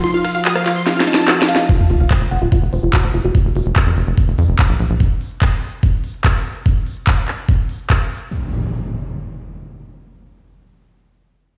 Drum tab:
RD |------x-----------x-----------x-----------x-----|------------------------------------------------|------------------------------------------------|------------------------------------------------|
HH |x--x--o-----x--o--o--x--x--x--o--x--x--x--o--x--|x--x--o--x--x--x--o--x--x--x--o--x--x--x--o--x--|x--x--o--x--x--o--o--x--x--x--o--x--x--x--o--x--|x--x--o--x--x--x--o--x--x--x--o--x--x--x--o--x--|
CP |------------x-----x-----------------x-----------|------------x-----------------------x-----------|------------x-----------------------x-----------|------------x-----------------------x-----------|
SD |------r--------r--------o---o---o---o---o---o---|------------------------------------------------|------------------------------------------------|------------------------------------------------|
BD |------------------------------------------------|o-----------o-----------o-----------o-----------|o-----------o-----------o-----------o-----------|o-----------o-----------o-----------o-----------|

RD |------------------------------------------------|------------------------------------------------|------------------------------------------------|
HH |x--x--o--x--x--o--o--x--x--x--o--x--x--x--o--x--|------------------------------------------------|------------------------------------------------|
CP |------------x-----x-----------------x-----------|------------------------------------------------|------------------------------------------------|
SD |------------------------------------------------|------------------------------------------------|------------------------------------------------|
BD |o-----------o-----------o-----------o-----------|------------------------------------------------|------------------------------------------------|